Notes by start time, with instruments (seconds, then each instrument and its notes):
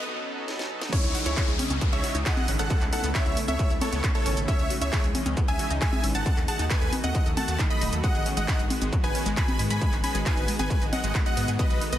0.04 analog synth pad F#3 B3 D#4 A4, swell
0.26 analog synth pad F#3 B3 D#4 A4
0.48 analog synth pad F#3 B3 D#4 A4, snare
0.59 snare
0.70 analog synth pad F#3 B3 D#4 A4
0.81 snare
0.93 analog synth pad C#3 G#3 D#4 E4, synth arpeggio sound C#4, supersaw synth E4 C#5, synth pluck C#5, kick, closed hi-hat, crash, downlifter, shaker
1.04 analog synth bass C#2, synth arpeggio sound C#5, closed hi-hat, shaker
1.15 analog synth pad C#3 G#3 D#4 E4, synth arpeggio sound F#4, open hi-hat
1.26 analog synth bass C#2, synth arpeggio sound C#4, supersaw synth E4 C#5, synth pluck C#5, closed hi-hat, shaker
1.37 analog synth pad C#3 G#3 D#4 E4, synth arpeggio sound G#4, kick, clap, closed hi-hat, shaker
1.48 analog synth bass C#2, synth arpeggio sound G#4, closed hi-hat, shaker
1.59 analog synth pad C#3 G#3 D#4 E4, synth arpeggio sound C#4, open hi-hat, high conga
1.70 analog synth bass C#2, synth arpeggio sound C#4, closed hi-hat, high conga, shaker
1.81 analog synth pad C#3 G#3 D#4 E4, synth arpeggio sound B3, kick, closed hi-hat, shaker
1.93 analog synth bass C#2, synth arpeggio sound G#4, supersaw synth C#5 E5, synth pluck E5, closed hi-hat, shaker
2.04 analog synth pad C#3 G#3 D#4 E4, synth arpeggio sound F#4, open hi-hat
2.15 analog synth bass C#2, synth arpeggio sound D#4, closed hi-hat, shaker
2.26 analog synth pad C#3 G#3 D#4 E4, synth arpeggio sound G#4, supersaw synth D#5 F#5, synth pluck F#5, kick, clap, closed hi-hat, shaker
2.37 synth arpeggio sound G#4, closed hi-hat, high conga, shaker
2.48 analog synth bass G#1, analog synth pad C#3 G#3 D#4 E4, synth arpeggio sound C#4, open hi-hat
2.59 analog synth bass G#1, synth arpeggio sound C#4, supersaw synth A4 F#5, synth pluck F#5, closed hi-hat, shaker
2.70 analog synth pad C#3 A3 B3 E4, synth arpeggio sound A3, kick, closed hi-hat, shaker
2.81 analog synth bass C#2, synth arpeggio sound E4, clap, closed hi-hat, shaker
2.93 analog synth pad C#3 A3 B3 E4, synth arpeggio sound D#4, supersaw synth A4 F#5, synth pluck F#5, open hi-hat
3.04 analog synth bass C#2, synth arpeggio sound B3, closed hi-hat, shaker
3.15 analog synth pad C#3 A3 B3 E4, synth arpeggio sound E4, supersaw synth C#5 E5, synth pluck E5, kick, clap, closed hi-hat, shaker
3.26 analog synth bass C#2, synth arpeggio sound E4, closed hi-hat, shaker
3.37 analog synth pad C#3 A3 B3 E4, synth arpeggio sound A3, open hi-hat
3.48 analog synth bass C#2, synth arpeggio sound A4, supersaw synth C#5 E5, synth pluck E5, closed hi-hat, high conga, shaker
3.59 analog synth pad C#3 A3 B3 E4, synth arpeggio sound A3, kick, closed hi-hat, shaker
3.70 analog synth bass C#2, synth arpeggio sound E4, closed hi-hat, shaker
3.81 analog synth pad C#3 A3 B3 E4, synth arpeggio sound G#3, supersaw synth A4 C#5, synth pluck C#5, open hi-hat, high conga
3.93 analog synth bass C#2, synth arpeggio sound B3, closed hi-hat, shaker
4.04 analog synth pad C#3 A3 B3 E4, synth arpeggio sound C#4, kick, clap, closed hi-hat, shaker
4.15 synth arpeggio sound E4, supersaw synth A4 C#5, synth pluck C#5, closed hi-hat, shaker
4.26 analog synth bass G#1, analog synth pad C#3 A3 B3 E4, synth arpeggio sound C#4, open hi-hat
4.37 analog synth bass G#1, synth arpeggio sound A4, closed hi-hat, shaker
4.48 analog synth pad C#3 E3 G#3 D#4, synth arpeggio sound C#4, supersaw synth C#5 E5, synth pluck E5, kick, closed hi-hat, shaker
4.59 analog synth bass C#2, synth arpeggio sound C#5, closed hi-hat, shaker
4.70 analog synth pad C#3 E3 G#3 D#4, synth arpeggio sound F#4, open hi-hat
4.81 analog synth bass C#2, synth arpeggio sound C#4, supersaw synth C#5 E5, synth pluck E5, closed hi-hat, shaker
4.93 analog synth pad C#3 E3 G#3 D#4, synth arpeggio sound G#4, kick, clap, closed hi-hat, shaker
5.04 analog synth bass C#2, synth arpeggio sound G#4, closed hi-hat, shaker
5.15 analog synth pad C#3 E3 G#3 D#4, synth arpeggio sound C#4, open hi-hat, high conga
5.26 analog synth bass C#2, synth arpeggio sound C#4, closed hi-hat, high conga, shaker
5.37 analog synth pad C#3 E3 G#3 D#4, synth arpeggio sound B3, kick, closed hi-hat, shaker
5.48 analog synth bass C#2, synth arpeggio sound G#4, supersaw synth E5 G#5, synth pluck G#5, closed hi-hat, shaker
5.59 analog synth pad C#3 E3 G#3 D#4, synth arpeggio sound F#4, open hi-hat
5.70 analog synth bass C#2, synth arpeggio sound D#4, closed hi-hat, shaker
5.82 analog synth pad C#3 E3 G#3 D#4, synth arpeggio sound G#4, supersaw synth E5 G#5, synth pluck G#5, kick, clap, closed hi-hat, shaker
5.93 synth arpeggio sound G#4, closed hi-hat, high conga, shaker
6.04 analog synth bass G#1, analog synth pad C#3 E3 G#3 D#4, synth arpeggio sound C#4, open hi-hat
6.15 analog synth bass G#1, synth arpeggio sound C#4, supersaw synth F#5 A5, synth pluck A5, closed hi-hat, shaker
6.26 analog synth pad D#3 F#3 A3 F#4, synth arpeggio sound D#4, kick, closed hi-hat, shaker
6.37 analog synth bass D#2, synth arpeggio sound A4, clap, closed hi-hat, shaker
6.48 analog synth pad D#3 F#3 A3 F#4, synth arpeggio sound G#4, supersaw synth F#5 A5, synth pluck A5, open hi-hat
6.59 analog synth bass D#2, synth arpeggio sound D#4, closed hi-hat, shaker
6.70 analog synth pad D#3 F#3 A3 F#4, synth arpeggio sound A4, supersaw synth B4 G#5, synth pluck G#5, kick, clap, closed hi-hat, shaker
6.81 analog synth bass D#2, synth arpeggio sound A4, closed hi-hat, shaker
6.92 analog synth pad D#3 F#3 A3 F#4, synth arpeggio sound D#4, open hi-hat, high conga
7.04 analog synth bass D#2, synth arpeggio sound D#5, supersaw synth D#5 F#5, synth pluck F#5, closed hi-hat, high conga, shaker
7.15 analog synth pad D#3 F#3 A3 F#4, synth arpeggio sound D#4, kick, closed hi-hat, shaker
7.26 analog synth bass D#2, synth arpeggio sound A4, closed hi-hat, shaker
7.37 analog synth pad D#3 F#3 A3 F#4, synth arpeggio sound A3, supersaw synth F#5 A5, synth pluck A5, open hi-hat, high conga
7.48 analog synth bass D#2, synth arpeggio sound F#4, closed hi-hat, shaker
7.59 synth arpeggio sound D#3, analog synth pad D#3 F#3 A3 F#4, kick, clap, closed hi-hat, shaker
7.70 synth arpeggio sound D#5, supersaw synth D#5 B5, synth pluck B5, closed hi-hat, shaker
7.81 analog synth bass D#1, analog synth pad D#3 F#3 A3 F#4, synth arpeggio sound D#4, open hi-hat
7.93 analog synth bass D#2, synth arpeggio sound A4, closed hi-hat, shaker
8.04 analog synth pad D#3 G#3 B3 F#4, synth arpeggio sound G#3, supersaw synth D#5 F#5, synth pluck F#5, kick, closed hi-hat, shaker
8.15 analog synth bass G#1, synth arpeggio sound G#4, closed hi-hat, shaker
8.26 analog synth pad D#3 G#3 B3 F#4, synth arpeggio sound C#4, open hi-hat
8.37 analog synth bass G#1, synth arpeggio sound G#3, supersaw synth D#5 F#5, synth pluck F#5, closed hi-hat, shaker
8.48 analog synth pad D#3 G#3 B3 F#4, synth arpeggio sound D#4, kick, clap, closed hi-hat, shaker
8.59 analog synth bass G#1, synth arpeggio sound D#4, closed hi-hat, shaker
8.70 analog synth pad D#3 G#3 B3 F#4, synth arpeggio sound G#3, open hi-hat, high conga
8.82 analog synth bass G#1, synth arpeggio sound G#3, closed hi-hat, high conga, shaker
8.93 analog synth pad D#3 G#3 B3 F#4, synth arpeggio sound F#3, kick, closed hi-hat, shaker
9.04 analog synth bass G#1, synth arpeggio sound D#4, supersaw synth B4 G#5, synth pluck G#5, closed hi-hat, shaker
9.15 analog synth pad D#3 G#3 B3 F#4, synth arpeggio sound C#4, open hi-hat
9.26 analog synth bass G#1, synth arpeggio sound G#3, closed hi-hat, shaker
9.37 analog synth pad D#3 G#3 B3 F#4, synth arpeggio sound D#4, supersaw synth G#5 B5, synth pluck B5, kick, clap, closed hi-hat, shaker
9.48 synth arpeggio sound D#4, closed hi-hat, high conga, shaker
9.59 analog synth bass G#2, analog synth pad D#3 G#3 B3 F#4, synth arpeggio sound G#3, open hi-hat
9.70 analog synth bass G#2, synth arpeggio sound G#3, supersaw synth G#5 B5, synth pluck B5, closed hi-hat, shaker
9.81 analog synth pad D#3 G#3 B3 F#4, synth arpeggio sound G#3, kick, closed hi-hat, shaker
9.93 analog synth bass G#1, synth arpeggio sound D#4, clap, closed hi-hat, shaker
10.04 analog synth pad D#3 G#3 B3 F#4, synth arpeggio sound C#4, supersaw synth G#5 B5, synth pluck B5, open hi-hat
10.15 analog synth bass G#1, synth arpeggio sound G#3, closed hi-hat, shaker
10.26 analog synth pad D#3 G#3 B3 F#4, synth arpeggio sound D#4, supersaw synth B4 G#5, synth pluck G#5, kick, clap, closed hi-hat, shaker
10.37 analog synth bass G#1, synth arpeggio sound D#4, closed hi-hat, shaker
10.48 analog synth pad D#3 G#3 B3 F#4, synth arpeggio sound G#3, open hi-hat
10.59 analog synth bass G#1, synth arpeggio sound G#4, supersaw synth B4 G#5, synth pluck G#5, closed hi-hat, high conga, shaker
10.70 analog synth pad D#3 G#3 B3 F#4, synth arpeggio sound G#3, kick, closed hi-hat, shaker
10.81 analog synth bass G#1, synth arpeggio sound D#4, closed hi-hat, shaker
10.93 analog synth pad D#3 G#3 B3 F#4, synth arpeggio sound F#3, supersaw synth D#5 F#5, synth pluck F#5, open hi-hat, high conga
11.04 analog synth bass G#1, synth arpeggio sound G#3, closed hi-hat, shaker
11.15 analog synth pad D#3 G#3 B3 F#4, synth arpeggio sound B3, kick, clap, closed hi-hat, shaker
11.26 synth arpeggio sound D#4, supersaw synth D#5 F#5, synth pluck F#5, closed hi-hat, shaker
11.37 analog synth bass G#2, analog synth pad D#3 G#3 B3 F#4, synth arpeggio sound B3, open hi-hat
11.48 analog synth bass G#2, synth arpeggio sound G#4, closed hi-hat, shaker
11.59 analog synth pad D#3 A3 B3 F#4, synth arpeggio sound B3, supersaw synth B4 D#5, synth pluck D#5, kick, closed hi-hat, shaker
11.70 analog synth bass B1, synth arpeggio sound B4, closed hi-hat, shaker
11.81 analog synth pad D#3 A3 B3 F#4, synth arpeggio sound D#4, open hi-hat
11.93 analog synth bass B1, synth arpeggio sound B3, supersaw synth B4 D#5, synth pluck D#5, closed hi-hat, shaker